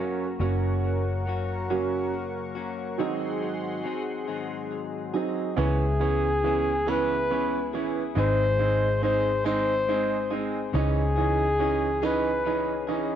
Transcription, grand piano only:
Already playing: F#3 A#3 C#4
0.40 F#3 A#3 C#4
1.70 F#3 A#3 C#4
2.98 F#3 C4 D#4
5.14 F#3 C4 D#4
5.57 E3 B3 C#4
6.00 E3 B3 C#4
6.44 E3 B3 C#4
6.87 E3 B3 C#4
7.30 E3 B3 C#4
7.74 E3 B3 C#4
8.15 G#3 C4 D#4
8.59 G#3 C4 D#4
9.02 G#3 C4 D#4
9.46 G#3 C4 D#4
9.89 G#3 C4 D#4
10.31 G#3 C4 D#4
10.74 E3 C#4 D#4
11.18 E3 C#4 D#4
11.59 E3 C#4 D#4
12.03 E3 C#4 D#4
12.46 E3 C#4 D#4
12.88 E3 C#4 D#4

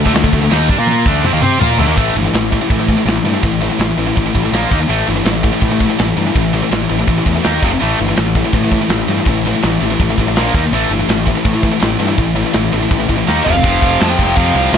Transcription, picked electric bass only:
0.06 D2
0.14 D2
0.24 D2
0.33 D2
0.41 D2
0.51 D#2
0.69 G2
0.79 A#2
1.06 D2
1.25 F2
1.34 D#2
1.42 C3
1.60 A#2
1.78 D2
1.87 D#2
1.98 A1
2.15 G1
2.34 A1
2.70 A2
3.06 A1
3.23 G2
3.43 A1
3.79 A1
3.97 A1
4.17 A1
4.35 A1
4.53 A#1
4.72 D#2
4.89 A1
5.08 G1
5.25 A1
5.62 A2
6.00 A1
6.17 G2
6.36 A1
6.72 A1
6.90 A1
7.07 A1
7.26 E2
7.46 D#2
7.63 F1
7.82 A1
8.00 G1
8.18 A1
8.53 A2
8.89 A1
9.07 G2
9.26 A1
9.64 A1
9.81 A1
10.00 A1
10.18 A1
10.36 A#1
10.54 D#2
10.72 A1
10.90 G1
11.08 A1
11.45 A2
11.82 A1
12.00 G2
12.18 A1
12.54 A1
12.73 A1
12.91 A1
13.10 A1
13.28 D#2
13.47 F1
13.64 F1
13.82 F1
14.02 F2
14.19 F1
14.37 F2
14.55 C2
14.73 C2

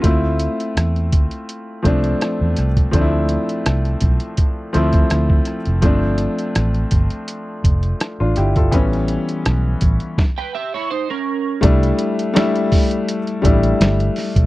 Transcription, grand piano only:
0.02 A3 C4 E4 F4
1.83 F3 A3 C4 D4
2.91 F3 A3 C4 D4
3.01 E4
4.73 F3 A3 C4 E4
5.82 F3 A3 C4 D4
8.20 D4 F4
8.37 E4 G4
8.57 F4 A4
8.72 E3 G3 B3 C#4
11.61 G3 A3 D4 E4
12.34 G3 A3 D4 E4
13.42 G3 A3 D4 E4

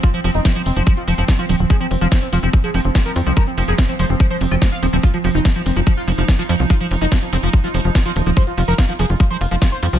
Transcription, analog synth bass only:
0.24 F1
0.35 F1
0.66 F1
0.76 F1
1.08 F1
1.18 F1
1.49 D#1
1.60 D#1
1.91 F1
2.01 F1
2.33 F1
2.43 F1
2.74 F1
2.85 F1
3.16 F2
3.26 C2
3.58 F1
3.68 F1
3.99 F1
4.10 F1
4.41 F1
4.51 F1
4.83 D#1
4.93 D#1
5.24 F1
5.35 F1
5.66 F1
5.76 F1
6.08 F1
6.18 F1
6.49 F2
6.60 C2
6.91 F1
7.01 F1
7.33 F1
7.43 F1
7.74 F1
7.85 F1
8.16 D#1
8.26 D#1
8.58 F1
8.68 F1
8.99 F1
9.10 F1
9.41 F1
9.51 F1
9.83 F2
9.93 C2

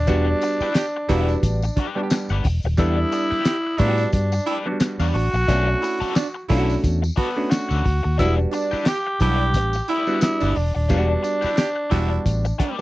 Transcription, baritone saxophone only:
0.42 D4
0.61 E4
0.75 G4
1.09 E4
1.76 D4
3.12 D4
3.31 E4
3.45 G4
3.78 E4
4.46 E4
4.99 D4
5.81 E4
6.00 F#4
6.16 D4
6.49 E4
7.17 F#4
8.51 D4
8.72 E4
8.87 G4
9.21 E4
9.88 E4
10.40 D4
11.24 D4
11.43 E4
11.58 G4
11.91 E4
12.59 D4

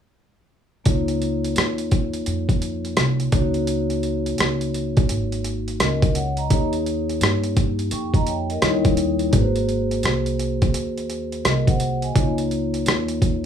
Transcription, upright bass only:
0.86 C#2
1.56 D#2
2.27 F2
2.97 C2
3.33 C#2
4.39 C#2
5.10 G#1
5.80 C#2
6.51 D#2
7.21 G2
7.92 F2
8.62 D#2
9.33 G#1
10.04 C2
10.74 D#2
11.45 C2
12.16 C#2
12.86 D#2

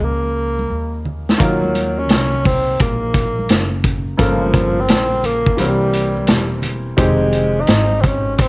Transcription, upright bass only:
0.00 C#2
0.70 D#2
1.40 D#2
2.10 C2
2.81 A#1
3.50 F#1
4.19 G1
4.89 A#1
5.59 C2
6.29 E1
6.98 F1
7.68 G#1
8.39 A#1

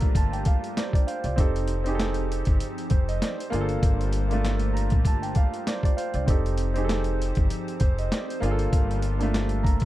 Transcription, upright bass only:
0.02 A#1
0.15 G1
1.24 C2
1.38 F1
2.47 G1
2.91 F1
3.52 G1
3.83 G1
4.92 A#1
5.05 G1
6.14 C2
6.28 F1
7.37 G1
7.81 F1
8.42 G1
8.73 G1
9.82 A#1

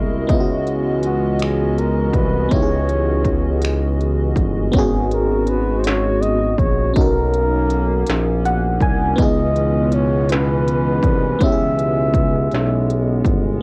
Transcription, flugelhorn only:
Already playing: E4
1.06 F#4
1.42 G#4
1.79 A#4
2.15 B4
2.52 C#5
5.14 A#4
5.49 B4
5.80 C5
5.85 C#5
6.22 D#5
6.59 C#5
6.96 A#4
9.21 D#5
9.94 C#5
10.32 B4
11.44 E5

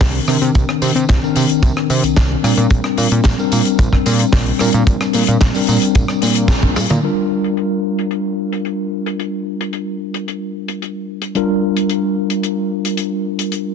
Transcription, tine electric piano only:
Already playing: D#3 C4 D4 A#4
0.27 D#3 C4 D4 A#4
1.22 D#3 C4 D4 A#4
2.43 G3 C4 D4 A#4
3.38 G3 C4 D4 A#4
4.59 G3 C4 D4 A#4
5.54 G3 C4 D4 A#4
7.03 G3 D4 F4 A#4
11.35 G3 D4 F4 A#4

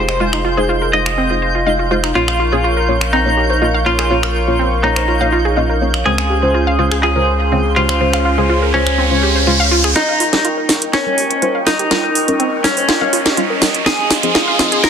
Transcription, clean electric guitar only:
Already playing: C5
0.93 D#5
2.15 F4
3.13 D#4
3.86 F4
4.84 D#4
6.06 G#4
7.03 G#4
7.76 F4
8.74 C#4
9.96 D#4
10.93 C#4
11.67 D#4
12.64 C#4
13.86 G#4
14.84 A#4

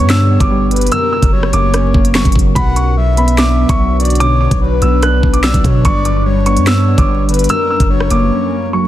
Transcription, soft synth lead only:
Already playing: C#5
0.71 B4
0.92 A#4
1.33 C#5
2.56 F#5
2.97 E5
4.00 D5
4.20 C#5
4.61 B4
5.44 D5
5.64 C#5
5.84 D5
6.26 C#5
7.29 B4
7.50 A#4
7.90 C#5

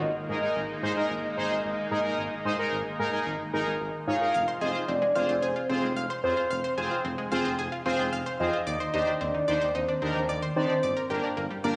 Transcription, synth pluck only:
4.34 F5
4.48 C5
4.61 G#4
4.75 F4
4.88 C4
5.02 G#3
5.15 F5
5.29 C5
5.42 G#4
5.56 F4
5.70 C4
5.83 G#3
5.96 F5
6.10 C5
6.37 F4
6.51 F5
6.64 C5
6.78 G#4
6.91 F4
7.05 C4
7.18 G#3
7.32 F5
7.45 C5
7.59 G#4
7.72 F4
7.86 C4
7.99 G#3
8.13 F5
8.26 C5
8.53 F4
8.67 D5
8.80 C5
8.94 D#4
9.07 D4
9.21 C4
9.34 D#3
9.48 D5
9.61 C5
9.75 D#4
9.89 D4
10.02 C4
10.15 D#3
10.29 D5
10.42 C5
10.70 D4
10.83 D5
10.97 A#4
11.10 G4
11.24 D4
11.37 A#3
11.51 G3
11.64 D5

